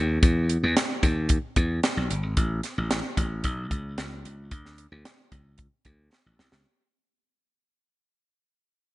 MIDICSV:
0, 0, Header, 1, 3, 480
1, 0, Start_track
1, 0, Tempo, 536193
1, 199, Time_signature, 4, 2, 24, 8
1, 8006, End_track
2, 0, Start_track
2, 0, Title_t, "Slap bass"
2, 0, Program_c, 0, 36
2, 0, Note_on_c, 0, 39, 82
2, 163, Note_off_c, 0, 39, 0
2, 203, Note_on_c, 0, 40, 119
2, 506, Note_off_c, 0, 40, 0
2, 567, Note_on_c, 0, 40, 87
2, 665, Note_off_c, 0, 40, 0
2, 921, Note_on_c, 0, 39, 84
2, 1225, Note_off_c, 0, 39, 0
2, 1403, Note_on_c, 0, 40, 95
2, 1604, Note_off_c, 0, 40, 0
2, 1764, Note_on_c, 0, 35, 84
2, 1864, Note_off_c, 0, 35, 0
2, 1884, Note_on_c, 0, 31, 86
2, 1996, Note_off_c, 0, 31, 0
2, 1996, Note_on_c, 0, 32, 99
2, 2099, Note_off_c, 0, 32, 0
2, 2124, Note_on_c, 0, 33, 119
2, 2326, Note_off_c, 0, 33, 0
2, 2487, Note_on_c, 0, 33, 95
2, 2687, Note_off_c, 0, 33, 0
2, 2841, Note_on_c, 0, 33, 89
2, 3084, Note_off_c, 0, 33, 0
2, 3084, Note_on_c, 0, 35, 96
2, 3286, Note_off_c, 0, 35, 0
2, 3319, Note_on_c, 0, 37, 87
2, 3523, Note_off_c, 0, 37, 0
2, 3562, Note_on_c, 0, 37, 97
2, 3765, Note_off_c, 0, 37, 0
2, 3808, Note_on_c, 0, 37, 79
2, 4043, Note_off_c, 0, 37, 0
2, 4043, Note_on_c, 0, 38, 121
2, 4347, Note_off_c, 0, 38, 0
2, 4403, Note_on_c, 0, 38, 89
2, 4503, Note_off_c, 0, 38, 0
2, 4761, Note_on_c, 0, 37, 86
2, 5066, Note_off_c, 0, 37, 0
2, 5242, Note_on_c, 0, 38, 88
2, 5445, Note_off_c, 0, 38, 0
2, 5605, Note_on_c, 0, 33, 81
2, 5705, Note_off_c, 0, 33, 0
2, 5722, Note_on_c, 0, 36, 82
2, 5823, Note_off_c, 0, 36, 0
2, 5839, Note_on_c, 0, 37, 91
2, 5941, Note_off_c, 0, 37, 0
2, 8006, End_track
3, 0, Start_track
3, 0, Title_t, "Drums"
3, 204, Note_on_c, 9, 36, 112
3, 204, Note_on_c, 9, 42, 79
3, 293, Note_off_c, 9, 36, 0
3, 293, Note_off_c, 9, 42, 0
3, 443, Note_on_c, 9, 42, 70
3, 533, Note_off_c, 9, 42, 0
3, 686, Note_on_c, 9, 38, 109
3, 686, Note_on_c, 9, 42, 97
3, 776, Note_off_c, 9, 38, 0
3, 776, Note_off_c, 9, 42, 0
3, 922, Note_on_c, 9, 36, 91
3, 923, Note_on_c, 9, 42, 78
3, 1011, Note_off_c, 9, 36, 0
3, 1012, Note_off_c, 9, 42, 0
3, 1154, Note_on_c, 9, 42, 94
3, 1163, Note_on_c, 9, 36, 94
3, 1244, Note_off_c, 9, 42, 0
3, 1252, Note_off_c, 9, 36, 0
3, 1399, Note_on_c, 9, 42, 73
3, 1400, Note_on_c, 9, 36, 85
3, 1488, Note_off_c, 9, 42, 0
3, 1489, Note_off_c, 9, 36, 0
3, 1642, Note_on_c, 9, 42, 86
3, 1644, Note_on_c, 9, 38, 117
3, 1731, Note_off_c, 9, 42, 0
3, 1734, Note_off_c, 9, 38, 0
3, 1885, Note_on_c, 9, 42, 72
3, 1974, Note_off_c, 9, 42, 0
3, 2121, Note_on_c, 9, 42, 81
3, 2123, Note_on_c, 9, 36, 99
3, 2210, Note_off_c, 9, 42, 0
3, 2212, Note_off_c, 9, 36, 0
3, 2358, Note_on_c, 9, 42, 67
3, 2364, Note_on_c, 9, 38, 32
3, 2448, Note_off_c, 9, 42, 0
3, 2454, Note_off_c, 9, 38, 0
3, 2602, Note_on_c, 9, 38, 113
3, 2602, Note_on_c, 9, 42, 91
3, 2691, Note_off_c, 9, 38, 0
3, 2692, Note_off_c, 9, 42, 0
3, 2841, Note_on_c, 9, 36, 100
3, 2842, Note_on_c, 9, 42, 77
3, 2931, Note_off_c, 9, 36, 0
3, 2932, Note_off_c, 9, 42, 0
3, 3077, Note_on_c, 9, 42, 86
3, 3083, Note_on_c, 9, 36, 89
3, 3167, Note_off_c, 9, 42, 0
3, 3172, Note_off_c, 9, 36, 0
3, 3321, Note_on_c, 9, 36, 87
3, 3322, Note_on_c, 9, 42, 75
3, 3410, Note_off_c, 9, 36, 0
3, 3412, Note_off_c, 9, 42, 0
3, 3561, Note_on_c, 9, 42, 83
3, 3563, Note_on_c, 9, 38, 117
3, 3651, Note_off_c, 9, 42, 0
3, 3653, Note_off_c, 9, 38, 0
3, 3808, Note_on_c, 9, 42, 70
3, 3898, Note_off_c, 9, 42, 0
3, 4040, Note_on_c, 9, 42, 80
3, 4042, Note_on_c, 9, 36, 105
3, 4130, Note_off_c, 9, 42, 0
3, 4132, Note_off_c, 9, 36, 0
3, 4167, Note_on_c, 9, 38, 31
3, 4257, Note_off_c, 9, 38, 0
3, 4280, Note_on_c, 9, 42, 64
3, 4370, Note_off_c, 9, 42, 0
3, 4524, Note_on_c, 9, 38, 106
3, 4524, Note_on_c, 9, 42, 90
3, 4613, Note_off_c, 9, 38, 0
3, 4614, Note_off_c, 9, 42, 0
3, 4761, Note_on_c, 9, 36, 93
3, 4761, Note_on_c, 9, 42, 75
3, 4850, Note_off_c, 9, 42, 0
3, 4851, Note_off_c, 9, 36, 0
3, 4993, Note_on_c, 9, 42, 89
3, 5002, Note_on_c, 9, 36, 93
3, 5083, Note_off_c, 9, 42, 0
3, 5092, Note_off_c, 9, 36, 0
3, 5235, Note_on_c, 9, 42, 73
3, 5240, Note_on_c, 9, 36, 79
3, 5325, Note_off_c, 9, 42, 0
3, 5329, Note_off_c, 9, 36, 0
3, 5485, Note_on_c, 9, 38, 58
3, 5575, Note_off_c, 9, 38, 0
3, 5722, Note_on_c, 9, 38, 87
3, 5811, Note_off_c, 9, 38, 0
3, 5837, Note_on_c, 9, 38, 89
3, 5927, Note_off_c, 9, 38, 0
3, 8006, End_track
0, 0, End_of_file